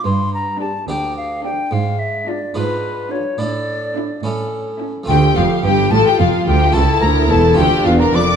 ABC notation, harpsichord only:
X:1
M:6/8
L:1/8
Q:3/8=72
K:Dm
V:1 name="Harpsichord"
z3 [DGd]3 | z3 [D^E=B]3 | [DEA]3 [^CEA]3 | [A,FA]6 |
[A,EA]3 [A,FA]3 |]
V:2 name="Harpsichord" clef=bass
G,,3 D,,3 | ^G,,3 G,,3 | A,,3 A,,3 | D,, F,, G,, A,, F,, D,, |
^C,, D,, E,, D,, E,, F,, |]